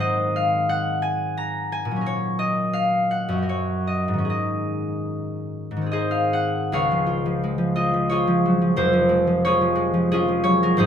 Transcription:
Already playing: G#2 D#3 C4 C5
0.00 D#5
0.36 F5
0.69 F#5
1.02 G#5
1.37 A#5
1.72 G#5
1.85 A#2
1.91 F#3
1.96 C#4
2.01 A#4
2.06 C#5
2.39 D#5
2.73 F5
3.11 F#5
3.28 F#2 F#3
3.38 C#4
3.42 A#4
3.49 C#5
3.87 D#5
4.08 G#2
4.13 D#3
4.18 C#4
4.25 G#4
4.30 D#5
5.71 G#2
5.77 D#3
5.82 C4
5.86 G#4
5.91 G#4 C5 D#5
6.11 F5
6.33 F#5
6.72 C#2 G#4 C#5 F5
6.91 F3
7.07 F4
7.26 F3
7.44 G#3
7.58 F3
7.76 F4 D#5
7.94 F3
8.10 F4 G#4 C#5
8.27 F3
8.46 F#3
8.61 F3
8.76 F1 F2 C5
8.93 F3
9.09 G#3
9.27 F3
9.45 G#3 F4 G#4 C#5
9.61 F3
9.75 G#3
9.94 F3
10.12 G#3 C#4 F4 G#4
10.28 F3
10.44 F#3 C#5
10.63 F3 A#4
10.77 G#1 G#2 D#4 G#4 C5

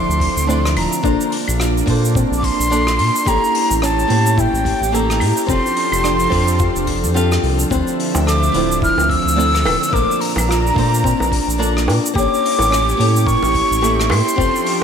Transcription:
Already playing: D3 F3 A3 C4 D4 E4 F4 C5 E5 C6
0.09 D2, shaker
0.20 kick, open hi-hat
0.37 D2, shaker
0.47 A3 C4 D4 E4 F4 D5, shaker
0.65 cross-stick, shaker
0.76 D1 A#5, open hi-hat, claves
0.93 shaker
1.03 A#1 A#3 D4 F4 A4 C5, kick, shaker
1.21 shaker
1.32 open hi-hat
1.48 A#1, claves, shaker
1.60 F4, cross-stick, shaker
1.78 shaker
1.86 A#2 A#3 D4 F4 A4, kick, open hi-hat
1.90 C5
2.05 shaker
2.15 C4, kick, shaker
2.31 A#1, shaker
2.38 D6
2.43 C6, kick, open hi-hat
2.59 A#1, shaker
2.70 A#3 D4 F4 A4 D5, shaker
2.87 cross-stick, shaker
2.99 A#2, open hi-hat
3.16 shaker
3.25 A1 A#3 C#4 E4 G4 A4 C#5 A#5, kick, shaker
3.44 shaker
3.55 open hi-hat
3.71 A1, shaker
3.82 C#4 A5, cross-stick, shaker
3.99 shaker
4.08 A2 A#3 E4 G4 A4 C#5, open hi-hat
4.26 shaker
4.38 E4 G5, kick, shaker
4.53 A1, shaker
4.65 kick, open hi-hat
4.81 A1, shaker
4.92 A#3 E4 G4 A4 E5 A#5, shaker
5.10 cross-stick, shaker
5.20 A2, open hi-hat, claves
5.37 shaker
5.46 F1 F3 C4 D4 F4 G4 A4, kick, shaker
5.50 D5 C6
5.66 shaker
5.76 open hi-hat
5.92 F1, claves, shaker
6.04 D4, cross-stick, shaker
6.19 shaker
6.30 F2 C4 F4 G4 A4, kick, open hi-hat
6.34 D5
6.48 shaker
6.59 F4, kick, shaker
6.76 F1, shaker
6.87 kick, open hi-hat
7.03 F2, shaker
7.14 C4 F4 G4 A4 F5, shaker
7.32 cross-stick, shaker
7.43 C2, open hi-hat
7.59 shaker
7.70 D2 D3 F3 A3 C4 D4 E4 F4 C5 E5, kick, shaker
7.87 shaker
7.99 open hi-hat
8.15 D2, high bongo, shaker
8.27 A4 D6, cross-stick, shaker
8.43 shaker
8.52 D1 A3 D4 E4 F4, open hi-hat
8.56 C5
8.72 shaker
8.82 E4 F6, kick, shaker
8.97 D2, high bongo, shaker
9.09 E6, kick, open hi-hat
9.25 D2, shaker
9.36 A3 C4 D4 E4 F4 D5
9.40 shaker
9.55 cross-stick, shaker
9.65 D1, open hi-hat, high bongo, claves
9.83 shaker
9.89 A#3 D4 E6
9.93 A#1 A#2 A3 D4 F4 A#4 C5 D6, kick, shaker
10.11 shaker
10.21 A#5, open hi-hat
10.36 A#1, high bongo, claves, shaker
10.49 F4, cross-stick, shaker
10.67 shaker
10.74 A#2 A3 A#3 D4 F4, kick, open hi-hat
10.79 C5
10.94 shaker
11.04 C4, kick, shaker
11.20 A#1, high bongo, shaker
11.32 kick, open hi-hat
11.48 A#1, shaker
11.58 A#3 D4 F4 A4 A#4 D5
11.62 shaker
11.77 cross-stick, shaker
11.88 A#2, open hi-hat, high bongo
12.06 shaker
12.14 A1 A#3 C#4 E4 G4 A4 D6, kick
12.18 C#4, shaker
12.34 shaker
12.45 open hi-hat
12.59 A1, high bongo, shaker
12.71 C#4, cross-stick, shaker
12.89 shaker
12.97 A2 A#3 E4 G4 A4 C#5, open hi-hat
13.16 shaker
13.26 A#4 C#6, kick, shaker
13.43 A1, high bongo, shaker
13.54 kick, open hi-hat
13.71 A1, shaker
13.81 A#3 E4 G4 A4 E5, shaker
14.00 cross-stick, shaker
14.09 A2 C6, open hi-hat, high bongo, claves
14.28 shaker
14.36 F1 F3 C4 D4 F4 G4 A4 D5, kick
14.41 shaker
14.56 shaker
14.66 open hi-hat

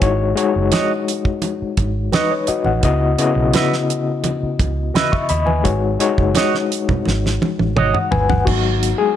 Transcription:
Already playing: E4
0.01 G#1 G#3 D#4 F#4 C#5, kick, closed hi-hat
0.36 G#3 D#4 F#4 C#5, closed hi-hat
0.56 F#1
0.71 F#4 C#5 D#5, snare, closed hi-hat, high conga
1.08 closed hi-hat
1.25 kick
1.42 closed hi-hat, muted conga
1.62 muted fingered electric bass stroke
1.77 G#1, kick, closed hi-hat, muted conga
2.12 D#4 F#4 B4 C#5 D#5, snare, closed hi-hat, high conga
2.31 C#5
2.47 F#4 D#5, muted fingered electric bass stroke, closed hi-hat
2.65 A1 F#5, high conga
2.83 C#2 C#3 B3 E4 F#4 D#5, kick, closed hi-hat, muted conga
3.18 C#3 B3 E4 F#4 D#5, closed hi-hat
3.36 B1
3.53 F#4 B4 E5, snare, closed hi-hat, high conga
3.73 snare
3.90 closed hi-hat
4.24 closed hi-hat, muted conga
4.43 muted fingered electric bass stroke
4.59 C#2, kick, closed hi-hat, muted conga
4.94 F#4 B4 D#5 E5 B5, snare, closed hi-hat, high conga
5.12 E5 C#6, kick
5.29 D#2 D#5 B5, closed hi-hat
5.46 B4 G#5, high conga
5.63 G#1 G#3 D#4 F#4 C#5, kick, closed hi-hat, muted conga
5.99 G#3 D#4 F#4 C#5, closed hi-hat
6.18 F#1, kick
6.35 F#4 C#5 D#5, snare, closed hi-hat, high conga
6.54 snare
6.72 closed hi-hat
6.89 kick, low conga
7.05 G#1, snare, muted conga
7.26 snare
7.42 high tom, muted conga
7.59 A1, high tom
7.76 G#1 F#4 C#5 D#5, mid tom, high conga
7.94 F#5, mid tom
8.11 G1 B4 G#5, floor tom
8.29 F#5, floor tom, high conga
8.45 G#1 F#3 B3 D#4 F#4, kick, crash, muted conga
8.83 closed hi-hat
8.98 G#3 G#4

